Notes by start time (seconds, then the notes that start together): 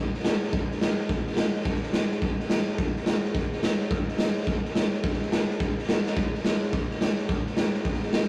0.14 snare
0.19 snare
0.24 snare, hi-hat pedal
0.42 snare
0.48 snare
0.53 kick, snare
0.71 snare
0.81 snare, hi-hat pedal
0.99 snare
1.09 kick, snare
1.27 snare
1.32 snare
1.37 snare, hi-hat pedal
1.55 snare
1.60 snare
1.65 kick, snare
1.74 snare
1.83 snare
1.93 snare, hi-hat pedal
2.11 snare
2.22 kick, snare
2.40 snare
2.50 snare, hi-hat pedal
2.68 snare
2.78 kick, snare
2.96 snare
3.06 snare, hi-hat pedal
3.25 snare
3.35 kick, snare
3.52 snare
3.63 snare, hi-hat pedal
3.81 snare
3.90 kick, snare
4.08 snare
4.18 snare, hi-hat pedal
4.36 snare
4.42 snare
4.47 kick, snare
4.65 snare
4.75 snare, hi-hat pedal
4.94 snare
5.04 kick, snare
5.13 snare
5.22 snare
5.32 snare, hi-hat pedal
5.50 snare
5.60 kick, snare
5.78 snare
5.84 snare
5.89 snare, hi-hat pedal
6.07 snare
6.17 kick, snare
6.34 snare
6.45 snare, hi-hat pedal
6.63 snare
6.73 kick, snare
6.91 snare
7.01 snare, hi-hat pedal
7.19 snare
7.29 kick, snare
7.46 snare
7.57 snare, hi-hat pedal
7.74 snare
7.85 kick, snare
7.93 snare
8.03 snare
8.13 snare, hi-hat pedal